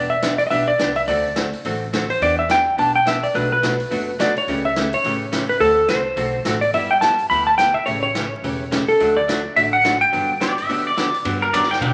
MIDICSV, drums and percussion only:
0, 0, Header, 1, 2, 480
1, 0, Start_track
1, 0, Key_signature, 1, "major"
1, 0, Tempo, 282885
1, 1826, Time_signature, 4, 2, 24, 8
1, 20251, End_track
2, 0, Start_track
2, 0, Title_t, "Drums"
2, 380, Note_on_c, 9, 38, 70
2, 380, Note_on_c, 9, 42, 55
2, 549, Note_off_c, 9, 38, 0
2, 549, Note_off_c, 9, 42, 0
2, 662, Note_on_c, 9, 46, 37
2, 832, Note_off_c, 9, 46, 0
2, 865, Note_on_c, 9, 46, 45
2, 1034, Note_off_c, 9, 46, 0
2, 1346, Note_on_c, 9, 38, 69
2, 1346, Note_on_c, 9, 42, 53
2, 1516, Note_off_c, 9, 38, 0
2, 1516, Note_off_c, 9, 42, 0
2, 1622, Note_on_c, 9, 46, 37
2, 1792, Note_off_c, 9, 46, 0
2, 1826, Note_on_c, 9, 46, 44
2, 1996, Note_off_c, 9, 46, 0
2, 2306, Note_on_c, 9, 38, 67
2, 2306, Note_on_c, 9, 42, 50
2, 2476, Note_off_c, 9, 38, 0
2, 2476, Note_off_c, 9, 42, 0
2, 2599, Note_on_c, 9, 46, 36
2, 2769, Note_off_c, 9, 46, 0
2, 2794, Note_on_c, 9, 46, 47
2, 2963, Note_off_c, 9, 46, 0
2, 3278, Note_on_c, 9, 38, 66
2, 3278, Note_on_c, 9, 42, 52
2, 3448, Note_off_c, 9, 38, 0
2, 3448, Note_off_c, 9, 42, 0
2, 3558, Note_on_c, 9, 46, 39
2, 3728, Note_off_c, 9, 46, 0
2, 3762, Note_on_c, 9, 46, 43
2, 3932, Note_off_c, 9, 46, 0
2, 4233, Note_on_c, 9, 38, 70
2, 4233, Note_on_c, 9, 42, 53
2, 4402, Note_off_c, 9, 38, 0
2, 4402, Note_off_c, 9, 42, 0
2, 4723, Note_on_c, 9, 46, 45
2, 4893, Note_off_c, 9, 46, 0
2, 5202, Note_on_c, 9, 38, 70
2, 5202, Note_on_c, 9, 42, 57
2, 5372, Note_off_c, 9, 38, 0
2, 5372, Note_off_c, 9, 42, 0
2, 5491, Note_on_c, 9, 46, 35
2, 5661, Note_off_c, 9, 46, 0
2, 5685, Note_on_c, 9, 46, 44
2, 5855, Note_off_c, 9, 46, 0
2, 6160, Note_on_c, 9, 38, 67
2, 6160, Note_on_c, 9, 42, 53
2, 6330, Note_off_c, 9, 38, 0
2, 6330, Note_off_c, 9, 42, 0
2, 6443, Note_on_c, 9, 46, 36
2, 6612, Note_off_c, 9, 46, 0
2, 6641, Note_on_c, 9, 46, 45
2, 6810, Note_off_c, 9, 46, 0
2, 7120, Note_on_c, 9, 38, 67
2, 7120, Note_on_c, 9, 42, 55
2, 7289, Note_off_c, 9, 38, 0
2, 7289, Note_off_c, 9, 42, 0
2, 7406, Note_on_c, 9, 46, 36
2, 7576, Note_off_c, 9, 46, 0
2, 7600, Note_on_c, 9, 46, 40
2, 7770, Note_off_c, 9, 46, 0
2, 8081, Note_on_c, 9, 38, 71
2, 8081, Note_on_c, 9, 42, 53
2, 8250, Note_off_c, 9, 38, 0
2, 8250, Note_off_c, 9, 42, 0
2, 8361, Note_on_c, 9, 46, 39
2, 8531, Note_off_c, 9, 46, 0
2, 8554, Note_on_c, 9, 46, 45
2, 8724, Note_off_c, 9, 46, 0
2, 9034, Note_on_c, 9, 38, 64
2, 9034, Note_on_c, 9, 42, 55
2, 9203, Note_off_c, 9, 38, 0
2, 9203, Note_off_c, 9, 42, 0
2, 9313, Note_on_c, 9, 46, 37
2, 9482, Note_off_c, 9, 46, 0
2, 9514, Note_on_c, 9, 46, 43
2, 9684, Note_off_c, 9, 46, 0
2, 9984, Note_on_c, 9, 38, 68
2, 9984, Note_on_c, 9, 42, 54
2, 10153, Note_off_c, 9, 38, 0
2, 10153, Note_off_c, 9, 42, 0
2, 10465, Note_on_c, 9, 46, 46
2, 10635, Note_off_c, 9, 46, 0
2, 10945, Note_on_c, 9, 38, 67
2, 10945, Note_on_c, 9, 42, 54
2, 11115, Note_off_c, 9, 38, 0
2, 11115, Note_off_c, 9, 42, 0
2, 11232, Note_on_c, 9, 46, 37
2, 11401, Note_off_c, 9, 46, 0
2, 11431, Note_on_c, 9, 46, 42
2, 11601, Note_off_c, 9, 46, 0
2, 11907, Note_on_c, 9, 38, 69
2, 11907, Note_on_c, 9, 42, 51
2, 12077, Note_off_c, 9, 38, 0
2, 12077, Note_off_c, 9, 42, 0
2, 12190, Note_on_c, 9, 46, 37
2, 12360, Note_off_c, 9, 46, 0
2, 12396, Note_on_c, 9, 46, 45
2, 12566, Note_off_c, 9, 46, 0
2, 12870, Note_on_c, 9, 38, 67
2, 12870, Note_on_c, 9, 42, 55
2, 13040, Note_off_c, 9, 38, 0
2, 13040, Note_off_c, 9, 42, 0
2, 13345, Note_on_c, 9, 46, 43
2, 13515, Note_off_c, 9, 46, 0
2, 13829, Note_on_c, 9, 38, 64
2, 13829, Note_on_c, 9, 42, 53
2, 13998, Note_off_c, 9, 38, 0
2, 13998, Note_off_c, 9, 42, 0
2, 14320, Note_on_c, 9, 46, 47
2, 14490, Note_off_c, 9, 46, 0
2, 14798, Note_on_c, 9, 38, 66
2, 14798, Note_on_c, 9, 42, 55
2, 14967, Note_off_c, 9, 38, 0
2, 14967, Note_off_c, 9, 42, 0
2, 15076, Note_on_c, 9, 46, 35
2, 15246, Note_off_c, 9, 46, 0
2, 15273, Note_on_c, 9, 46, 43
2, 15442, Note_off_c, 9, 46, 0
2, 15760, Note_on_c, 9, 38, 64
2, 15760, Note_on_c, 9, 42, 54
2, 15929, Note_off_c, 9, 38, 0
2, 15929, Note_off_c, 9, 42, 0
2, 16228, Note_on_c, 9, 46, 46
2, 16397, Note_off_c, 9, 46, 0
2, 16707, Note_on_c, 9, 38, 66
2, 16707, Note_on_c, 9, 42, 56
2, 16877, Note_off_c, 9, 38, 0
2, 16877, Note_off_c, 9, 42, 0
2, 17190, Note_on_c, 9, 46, 42
2, 17360, Note_off_c, 9, 46, 0
2, 17665, Note_on_c, 9, 38, 66
2, 17665, Note_on_c, 9, 42, 51
2, 17835, Note_off_c, 9, 38, 0
2, 17835, Note_off_c, 9, 42, 0
2, 17951, Note_on_c, 9, 46, 36
2, 18121, Note_off_c, 9, 46, 0
2, 18147, Note_on_c, 9, 46, 46
2, 18317, Note_off_c, 9, 46, 0
2, 18623, Note_on_c, 9, 38, 68
2, 18623, Note_on_c, 9, 42, 53
2, 18792, Note_off_c, 9, 38, 0
2, 18792, Note_off_c, 9, 42, 0
2, 18905, Note_on_c, 9, 46, 36
2, 19075, Note_off_c, 9, 46, 0
2, 19090, Note_on_c, 9, 51, 65
2, 19260, Note_off_c, 9, 51, 0
2, 19577, Note_on_c, 9, 44, 53
2, 19577, Note_on_c, 9, 51, 70
2, 19735, Note_on_c, 9, 38, 29
2, 19747, Note_off_c, 9, 44, 0
2, 19747, Note_off_c, 9, 51, 0
2, 19898, Note_off_c, 9, 38, 0
2, 19898, Note_on_c, 9, 38, 43
2, 20056, Note_on_c, 9, 51, 65
2, 20068, Note_off_c, 9, 38, 0
2, 20226, Note_off_c, 9, 51, 0
2, 20251, End_track
0, 0, End_of_file